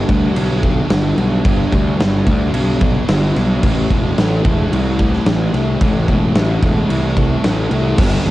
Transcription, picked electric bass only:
0.09 D2
0.37 B1
0.90 G1
1.18 B1
1.45 G1
1.73 D2
2.00 G1
2.27 D2
2.54 B1
3.09 G1
3.36 B1
3.63 A1
3.90 E1
4.18 A1
4.45 E1
4.72 C2
5.26 A1
5.54 C2
5.82 A1
6.08 E1
6.35 A1
6.62 E1
6.90 C2
7.44 A1
7.71 C2
7.98 G1
8.25 G1

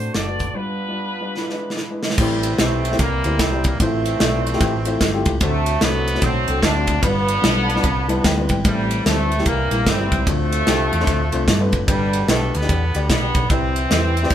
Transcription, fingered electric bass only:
0.15 F#1
2.18 A1
2.59 B1
3.00 C2
3.24 D2
3.40 C2
3.80 A1
4.21 B1
4.61 A1
5.01 G1
5.26 C#2
5.41 D2
5.82 C2
6.23 B1
6.48 C2
6.63 D2
7.03 G1
7.43 B1
7.84 C2
8.25 D2
8.50 G#1
8.65 A1
9.06 D2
9.46 C2
9.71 A#1
9.87 G1
10.12 C#2
10.27 D2
10.68 C2
10.93 E2
11.08 D2
11.33 C2
11.48 G2
11.73 F#1
11.88 G1
12.28 B1
12.55 D2
12.70 E2
12.95 D2
13.10 B1
13.35 B1
13.50 C2
13.91 E2
14.31 D2

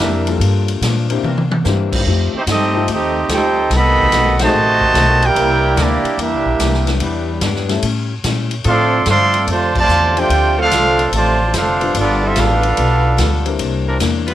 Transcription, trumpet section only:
Already playing: D4 G4 A#4 E5
2.37 A3 D#4 G4 C5
2.51 C4 G4 A4 D#5
2.93 C4 G4 A4 D#5
3.34 D#4 A4 C5 G5
3.76 A4 D#5 F#5 B5
4.45 F#4 C5 D#5 A5
5.26 E4 A#4 D5 G5
5.81 A#3 E4 G4 D5
6.22 D4 G4 A#4 E5
8.68 A4 D5 F5 C6
9.08 A4 D5 F5 C6
9.50 F4 C5 D5 A5
9.79 F4 C5 D5 A5
10.19 F4 C5 D5 G5
10.61 D4 A4 C5 F5
11.15 F4 C5 D5 A5
11.56 D4 A4 C5 F5
11.99 B3 F4 A4 D5
12.26 C4 F4 A4 E5
12.39 D4 A4 B4 F5

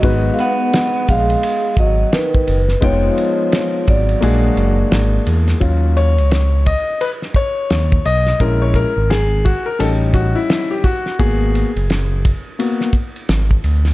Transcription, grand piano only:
0.02 G#3 B3 D#4 F#4 B4
2.81 G#3 B3 D#4 F4 G5
4.21 G#3 A#3 D4 F#4 G#4
5.60 F#3 C#4 F4
5.97 C#5
6.66 D#5
7.01 B4
7.36 C#5
8.06 D#5
8.40 G#3 C#4 E4 A#4
8.62 C#5
8.75 A#4
9.10 G#4
9.45 F#4
9.66 A#4
9.79 G3 C#4 D#4 A4
10.14 F#4
10.35 E4
10.71 G4
10.84 F#4
11.19 A#3 B3 F#4 G#4
12.59 A#3 B3 F#4

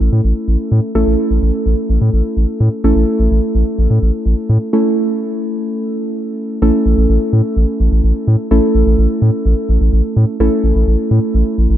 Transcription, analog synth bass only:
0.01 A1
0.12 A2
0.24 A1
0.48 A1
0.72 A2
0.95 A1
1.07 A1
1.31 A1
1.42 A1
1.66 A1
1.90 A1
2.01 A2
2.13 A1
2.37 A1
2.60 A2
2.84 A1
2.96 A1
3.19 A1
3.31 A1
3.55 A1
3.79 A1
3.90 A2
4.02 A1
4.26 A1
4.49 A2
6.62 A1
6.86 A1
6.97 A1
7.09 A1
7.33 A2
7.57 A1
7.80 A1
7.92 A1
8.04 A1
8.28 A2
8.51 A1
8.75 A1
8.87 A1
8.98 A1
9.22 A2
9.46 A1
9.69 A1
9.81 A1
9.93 A1
10.16 A2
10.40 A1
10.64 A1
10.75 A1
10.87 A1
11.11 A2
11.34 A1
11.58 A1
11.70 A1

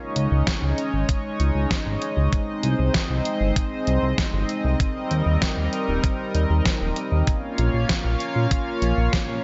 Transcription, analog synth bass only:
0.16 C#2
0.32 C#2
0.63 C#2
0.94 G#1
1.40 C#2
1.55 C#2
1.86 G#1
2.17 C#2
2.64 C2
2.79 C2
3.10 C2
3.41 G1
3.87 C2
4.03 C2
4.33 G1
4.65 C2
5.11 D#2
5.26 D#2
5.57 D#2
5.88 D#1
6.35 D#2
6.50 D#2
6.81 D#1
7.12 D#2
7.58 A#1
7.74 A#1
8.05 A#1
8.36 A#2
8.82 A#1
8.98 A#1
9.29 A#2

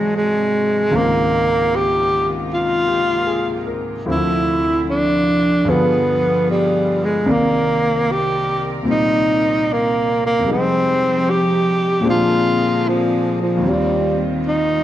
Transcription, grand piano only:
Already playing: G#2 C3 E3 F#3 C4 D4 F#4 G#4 B4
0.91 C#2 G#2 D#3 A#3 C4 F4
2.88 G4
3.27 G#4
3.67 A#4
4.06 D2 D3 F3 C4 E4
5.65 G2 D3 F3
5.69 B3 G#4
7.26 C2 C3 D#3 A#3 D5
8.83 A#2 C3 G3 C4
10.39 F2 C3
10.44 G3 G#3
10.50 D#4
12.01 A#2 F3 G#3 C4
12.06 D4
13.57 D#2 D#3
13.63 G3 C4
13.68 F4

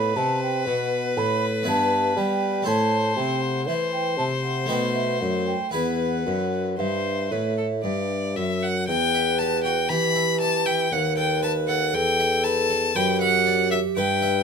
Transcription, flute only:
Already playing: B5
0.16 A5
0.42 G5
0.67 F#5
1.18 B5
1.68 A5
2.18 G5
2.68 A5
3.17 G5
3.42 F#5
3.67 E5
3.92 G5
4.17 A5
4.43 F#5
4.68 G5
4.93 E5
5.20 F#5
5.46 G5
5.71 F#5
6.79 E5
8.88 B4
9.91 G4
10.92 B4
11.95 A4
12.96 G4
13.98 B4

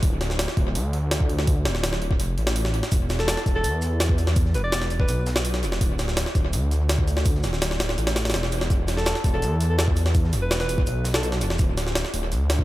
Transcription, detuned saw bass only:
0.03 D1
0.57 D1
0.76 D2
1.66 D1
2.02 D1
2.20 F1
2.38 A1
2.92 E1
3.46 E1
3.64 E2
4.54 E1
4.91 E1
5.09 B1
5.63 E1
5.81 D1
6.35 D1
6.53 D2
7.44 D1
7.80 D1
7.98 A1
8.34 E1
8.70 E1
9.24 E1
9.43 E2
10.33 E1
10.69 E1
10.87 B1
11.41 E1
11.59 D1
12.14 D1
12.32 D2

